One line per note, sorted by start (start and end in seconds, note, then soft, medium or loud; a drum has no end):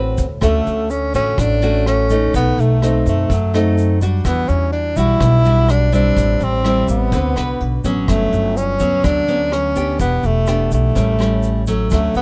0.00 0.14 A1 loud
0.00 0.40 A2 medium
0.00 0.25 C4 medium
0.00 0.25 F#4 medium
0.00 0.25 B4 medium
0.17 0.41 D2 medium
0.17 kick soft
0.17 closed hi-hat soft
0.17 shaker medium
0.41 0.65 D2 medium
0.41 1.35 D3 soft
0.41 0.89 A3 medium
0.41 0.92 A3 medium
0.41 0.90 C#4 soft
0.41 0.90 F#4 medium
0.41 kick soft
0.41 cross-stick medium
0.41 closed hi-hat soft
0.41 shaker medium
0.66 1.11 D2 medium
0.66 closed hi-hat soft
0.66 shaker soft
0.90 1.14 C#4 medium
0.90 closed hi-hat soft
0.90 shaker medium
1.14 1.36 A1 medium
1.14 1.58 A3 medium
1.14 1.58 C#4 medium
1.14 1.42 C#4 medium
1.14 1.59 F#4 medium
1.14 kick soft
1.14 closed hi-hat soft
1.14 shaker medium
1.38 2.30 A1 medium
1.38 2.31 A2 soft
1.38 1.87 D4 medium
1.38 kick medium
1.38 cross-stick medium
1.38 closed hi-hat medium
1.38 shaker medium
1.62 2.06 A3 medium
1.62 2.06 C#4 medium
1.62 2.06 F#4 medium
1.62 closed hi-hat soft
1.62 shaker soft
1.86 2.31 C#4 medium
1.86 cross-stick medium
1.86 closed hi-hat soft
2.10 2.78 A3 medium
2.10 2.78 D#4 medium
2.10 kick soft
2.10 closed hi-hat soft
2.10 shaker medium
2.34 2.56 B1 medium
2.34 3.28 B2 medium
2.34 2.62 B3 medium
2.34 kick medium
2.34 closed hi-hat soft
2.34 shaker medium
2.58 3.02 B1 medium
2.58 3.07 A3 medium
2.58 closed hi-hat soft
2.58 shaker soft
2.82 3.30 A3 medium
2.82 3.30 C4 medium
2.82 3.30 D#4 medium
2.82 cross-stick soft
2.82 closed hi-hat soft
2.82 shaker medium
3.06 3.28 F#2 medium
3.06 3.99 A3 medium
3.06 kick soft
3.06 closed hi-hat soft
3.06 shaker medium
3.30 4.22 F#2 loud
3.30 4.23 F#3 medium
3.30 kick medium
3.30 closed hi-hat medium
3.30 shaker medium
3.54 3.98 A3 medium
3.54 3.98 C4 medium
3.54 3.98 D#4 medium
3.54 cross-stick soft
3.54 closed hi-hat soft
3.54 shaker soft
3.78 closed hi-hat soft
3.78 shaker soft
4.01 4.93 G3 medium
4.01 4.94 D4 medium
4.01 4.94 F#4 medium
4.01 kick soft
4.01 closed hi-hat soft
4.01 shaker medium
4.25 4.47 E2 medium
4.25 5.19 E3 medium
4.25 4.50 B3 medium
4.25 kick medium
4.25 cross-stick medium
4.25 closed hi-hat medium
4.25 shaker medium
4.48 4.94 E2 medium
4.48 4.72 C#4 medium
4.48 closed hi-hat soft
4.48 shaker soft
4.72 4.98 D4 medium
4.72 closed hi-hat soft
4.96 5.19 B1 medium
4.96 5.41 G3 medium
4.96 5.41 D4 medium
4.96 5.72 E4 loud
4.96 5.42 F#4 medium
4.96 kick soft
4.96 closed hi-hat soft
4.96 shaker medium
5.20 6.13 B1 loud
5.20 6.14 B2 soft
5.20 kick medium
5.20 cross-stick medium
5.20 closed hi-hat medium
5.20 shaker medium
5.45 5.89 G3 medium
5.45 5.89 D4 medium
5.45 5.90 F#4 medium
5.45 closed hi-hat soft
5.45 shaker soft
5.69 5.94 D4 medium
5.69 cross-stick medium
5.69 closed hi-hat soft
5.69 shaker soft
5.92 6.61 G3 medium
5.92 6.61 C4 medium
5.92 6.45 D4 medium
5.92 6.61 E4 medium
5.92 kick soft
5.92 closed hi-hat soft
5.92 shaker medium
6.16 6.39 A1 medium
6.16 7.10 A2 medium
6.16 kick medium
6.16 closed hi-hat medium
6.16 shaker medium
6.40 6.85 A1 medium
6.40 6.90 C4 medium
6.40 closed hi-hat soft
6.40 shaker soft
6.65 7.11 G3 medium
6.65 7.11 C4 medium
6.65 7.11 E4 medium
6.65 cross-stick medium
6.65 closed hi-hat soft
6.88 7.11 A1 medium
6.88 7.81 B3 medium
6.88 kick soft
6.88 closed hi-hat soft
6.88 shaker medium
7.12 7.35 D2 loud
7.12 8.06 D3 medium
7.12 7.33 C4 medium
7.12 7.33 F#4 soft
7.12 7.33 B4 medium
7.12 kick medium
7.12 closed hi-hat medium
7.12 shaker medium
7.36 7.58 C2 medium
7.36 7.80 F#4 medium
7.36 7.81 B4 medium
7.36 cross-stick soft
7.36 closed hi-hat soft
7.36 shaker soft
7.60 7.82 B1 medium
7.60 closed hi-hat soft
7.84 8.06 A1 medium
7.84 8.76 F#3 medium
7.84 8.77 B3 medium
7.84 8.77 C#4 medium
7.84 kick soft
7.84 closed hi-hat soft
7.84 shaker medium
8.08 8.30 G1 medium
8.08 9.02 G2 medium
8.08 8.59 A3 medium
8.08 kick medium
8.08 cross-stick medium
8.08 closed hi-hat medium
8.08 shaker medium
8.32 8.77 G1 medium
8.32 closed hi-hat soft
8.32 shaker soft
8.57 9.06 C#4 medium
8.57 closed hi-hat soft
8.57 shaker medium
8.80 9.02 D2 medium
8.80 9.24 F#3 medium
8.80 9.24 B3 medium
8.80 9.24 C#4 medium
8.80 kick soft
8.80 closed hi-hat soft
8.80 shaker medium
9.04 9.96 D2 medium
9.04 9.97 D3 soft
9.04 9.54 D4 loud
9.04 kick medium
9.04 cross-stick medium
9.04 closed hi-hat medium
9.04 shaker medium
9.28 9.72 F#3 medium
9.28 9.72 B3 medium
9.28 9.72 C#4 medium
9.28 closed hi-hat soft
9.28 shaker soft
9.52 10.00 C#4 medium
9.52 cross-stick medium
9.52 closed hi-hat soft
9.76 10.44 B3 medium
9.76 10.44 D4 medium
9.76 10.44 G4 medium
9.76 kick soft
9.76 closed hi-hat soft
9.76 shaker medium
9.99 10.22 E1 medium
9.99 10.93 E3 medium
9.99 10.27 B3 medium
9.99 kick soft
9.99 closed hi-hat medium
9.99 shaker medium
10.23 10.68 E1 medium
10.23 10.73 A3 medium
10.23 closed hi-hat soft
10.23 shaker soft
10.47 10.93 B3 soft
10.47 10.93 D4 medium
10.47 10.94 G4 medium
10.47 cross-stick medium
10.47 closed hi-hat soft
10.47 shaker medium
10.72 10.94 B1 medium
10.72 11.64 A3 medium
10.72 kick soft
10.72 closed hi-hat soft
10.72 shaker medium
10.95 11.88 A1 loud
10.95 11.89 A2 soft
10.95 11.15 G3 soft
10.95 11.16 A#3 soft
10.95 11.16 C#4 medium
10.95 kick medium
10.95 closed hi-hat medium
10.95 shaker medium
11.19 11.63 G3 medium
11.19 11.64 C#4 medium
11.19 cross-stick medium
11.19 closed hi-hat soft
11.19 shaker soft
11.43 closed hi-hat soft
11.43 shaker soft
11.67 12.22 F#3 medium
11.67 12.22 A3 medium
11.67 12.22 C#4 medium
11.67 kick soft
11.67 closed hi-hat soft
11.67 shaker medium
11.90 12.14 D2 medium
11.90 12.22 D3 medium
11.90 12.15 A3 medium
11.90 kick medium
11.90 cross-stick medium
11.90 closed hi-hat soft
11.90 shaker medium
12.15 12.22 D2 medium
12.15 12.22 B3 medium
12.15 closed hi-hat soft
12.15 shaker soft